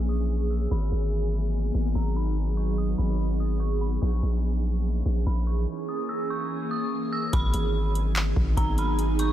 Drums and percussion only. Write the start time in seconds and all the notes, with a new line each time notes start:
7.33 kick, closed hi-hat
7.54 closed hi-hat
7.95 closed hi-hat
8.16 clap, closed hi-hat
8.36 kick
8.57 kick, closed hi-hat
8.78 closed hi-hat
8.99 closed hi-hat
9.19 closed hi-hat